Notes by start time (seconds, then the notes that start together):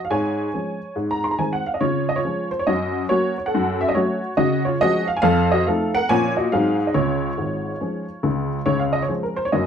0.05 F5
0.10 G#2 C#5 G#5
0.54 F3 G#3 C#4
0.96 G#2
1.11 A#5
1.24 C6
1.31 A#5
1.38 D#3 G#3 C4 G#5
1.53 F#5
1.66 F5
1.74 D#5
1.81 C#3 F4 C#5
2.09 D#5
2.16 F4 C#5
2.25 F3 G#3 C#4
2.51 C5
2.59 C#5
2.67 F#2 F#4 D#5
3.09 F#3 A#3 C#4 F#4 C#5
3.38 C#5
3.46 A4 F#5
3.54 F#2
3.81 E5
3.89 D#5
3.95 F#3 A3 C#4 F#4 C#5
4.37 C#3 F#4 D#5
4.65 F4 C#5
4.81 F3 G#3 C#4 F#4 D#5
5.08 F5
5.17 G#5
5.22 F2 A4 F5
5.52 F#4 D#5
5.67 F3 A3 D#4 A4 F5
5.95 A#4 F#5
6.09 A#2 F3 A#3 C#4 C#5 G#5
6.37 F#4 D#5
6.52 G#2 F#3 C4 D#4 G#4 F5
6.87 D#5
6.94 C#2 C#3 F4 C#5
7.38 G#1 G#2
7.81 F3 G#3 C#4
8.23 C#2 C#3
8.66 C#2 C#3 C#5
8.79 F5
8.93 D#5
9.02 C#5
9.08 F3 G#3 C#4 C5
9.23 A#4
9.36 C5
9.45 C#5
9.52 F#1 F#2 D#5